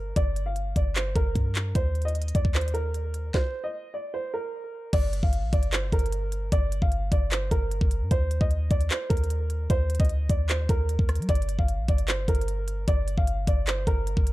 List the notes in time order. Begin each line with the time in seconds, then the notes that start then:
Already playing: G1 A#4
0.16 G1 D5, kick, closed hi-hat
0.36 closed hi-hat
0.46 F5
0.56 closed hi-hat
0.76 G1 D5, kick, closed hi-hat
0.96 C5, clap, closed hi-hat
1.16 G1 A#4, kick, closed hi-hat
1.35 G2, kick, closed hi-hat
1.55 clap, closed hi-hat
1.75 D#2 C5, kick, closed hi-hat
1.95 closed hi-hat
2.02 D#5, closed hi-hat
2.08 closed hi-hat
2.15 closed hi-hat
2.22 closed hi-hat
2.28 closed hi-hat
2.35 D#2 D5, kick, closed hi-hat
2.45 D#2, kick
2.55 C5, clap, closed hi-hat
2.61 closed hi-hat
2.68 closed hi-hat
2.74 A#4, closed hi-hat
2.94 closed hi-hat
3.14 closed hi-hat
3.34 C5, kick, snare
3.64 D#5
3.94 D5
4.14 C5
4.34 A#4
4.93 G1 D5, kick, closed hi-hat, crash
5.13 closed hi-hat
5.23 G1 F5, kick
5.33 closed hi-hat
5.43 A#1
5.53 G1 D5, kick, closed hi-hat
5.63 closed hi-hat
5.73 C5, clap, closed hi-hat
5.92 G1 A#4, kick, closed hi-hat
5.99 closed hi-hat
6.06 closed hi-hat
6.12 closed hi-hat
6.32 closed hi-hat
6.52 G1 D5, kick, closed hi-hat
6.72 closed hi-hat
6.82 G1 F5, kick
6.92 closed hi-hat
7.12 G1 D5, kick, closed hi-hat
7.31 C5, clap, closed hi-hat
7.51 G1 A#4, kick, closed hi-hat
7.71 closed hi-hat
7.81 G1, kick
7.91 closed hi-hat
8.01 G2
8.11 D#2 C5, kick, closed hi-hat
8.31 closed hi-hat
8.41 D#2 D#5, kick
8.51 closed hi-hat
8.71 D#2 D5, kick, closed hi-hat
8.81 closed hi-hat
8.90 C5, clap, closed hi-hat
9.10 D#2 A#4, kick, closed hi-hat
9.17 closed hi-hat
9.24 closed hi-hat
9.30 closed hi-hat
9.50 closed hi-hat
9.70 D#2 C5, kick, closed hi-hat
9.90 closed hi-hat
9.95 closed hi-hat
9.99 D2 D#5, kick, closed hi-hat
10.05 closed hi-hat
10.09 closed hi-hat
10.30 D#2 D5, kick, closed hi-hat
10.49 C5, clap, closed hi-hat
10.69 D#2 A#4, kick, closed hi-hat
10.89 closed hi-hat
10.99 D#2, kick
11.09 cross-stick, closed hi-hat, open hi-hat
11.16 G3, closed hi-hat
11.22 closed hi-hat
11.29 G1 D5, kick, closed hi-hat
11.35 closed hi-hat
11.42 closed hi-hat
11.49 closed hi-hat
11.59 G1 F5, kick
11.68 closed hi-hat
11.79 A#1
11.88 G1 D5, kick, closed hi-hat
11.98 closed hi-hat
12.08 C5, clap, closed hi-hat
12.28 G1 A#4, kick, closed hi-hat
12.35 closed hi-hat
12.41 closed hi-hat
12.48 closed hi-hat
12.68 closed hi-hat
12.88 G1 D5, kick, closed hi-hat
13.08 closed hi-hat
13.18 G1 F5, kick
13.27 closed hi-hat
13.47 G1 D5, kick, closed hi-hat
13.67 C5, clap, closed hi-hat
13.87 G1 A#4, kick, closed hi-hat
14.07 closed hi-hat
14.17 G1, kick
14.27 closed hi-hat